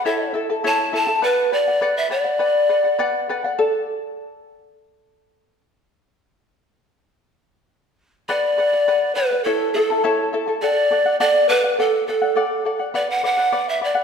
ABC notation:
X:1
M:2/4
L:1/16
Q:1/4=102
K:Bm
V:1 name="Charango"
[EAcea]2 [EAea] [EAa] [EAcea]2 [EAea] [EAa] | [Bdf]2 [Bdf] [df] [Bdf]2 [Bdf] [df] | [Bdf]2 [Bdf] [df] [Bdf]2 [Bdf] [df] | [Ad]8- |
[Ad]6 z2 | z8 | z8 | [Bdf]2 [Bdf] [df] [Bdf]2 [Bdf] [df] |
[EAcea]2 [EAea] [EAa] [EAcea]2 [EAea] [EAa] | [Adf]2 [Adf] [df] [Adf]2 [Adf] [df] | [Adf]2 [Adf] [df] [Adf]2 [Adf] [df] | [Bdf]2 [Bdf] [df] [Bdf]2 [Bdf] [df] |]
V:2 name="Pan flute"
e2 z2 a2 a2 | B2 d3 e d2- | d6 z2 | z8 |
z8 | z8 | z8 | d6 B2 |
A2 A4 z2 | d4 d2 B2 | A2 A4 z2 | d f f3 e d2 |]